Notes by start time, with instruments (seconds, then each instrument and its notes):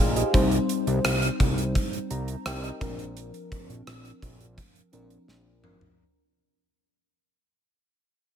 Already playing: fm electric piano C5 D#5 G5 G#5 A#5 C6
0.00 analog synth bass A#1, fm electric piano G#4 F5
0.16 fm electric piano G4 D#5, closed hi-hat
0.33 analog synth bass C2, fm electric piano G3 C4 D#4 C5, kick, closed hi-hat
0.51 closed hi-hat
0.69 closed hi-hat
0.87 analog synth bass C2, closed hi-hat
1.05 analog synth bass C2, cross-stick, closed hi-hat
1.22 closed hi-hat
1.40 analog synth bass C2, kick, closed hi-hat
1.58 closed hi-hat
1.75 kick, closed hi-hat
1.93 closed hi-hat
2.11 analog synth bass C2, fm electric piano A#5, closed hi-hat
2.28 closed hi-hat
2.46 analog synth bass C2, fm electric piano A#4 G5, cross-stick, closed hi-hat
2.64 fm electric piano G4 D#5, closed hi-hat
2.81 analog synth bass A#1, fm electric piano F3 C4 D4 A#4, kick, closed hi-hat
2.99 closed hi-hat
3.17 closed hi-hat
3.34 closed hi-hat
3.52 kick, closed hi-hat
3.69 analog synth bass A#1, closed hi-hat
3.87 analog synth bass A#1, cross-stick, closed hi-hat
4.05 closed hi-hat
4.22 analog synth bass A#1, kick, closed hi-hat
4.40 closed hi-hat
4.58 kick, closed hi-hat
4.75 closed hi-hat
4.92 analog synth bass A#1, fm electric piano F3 C4 D4 A#4, closed hi-hat
5.10 closed hi-hat
5.28 analog synth bass A#1, snare
5.63 analog synth bass G#1, fm electric piano F3 C4 D4 A#4, mid tom
5.81 floor tom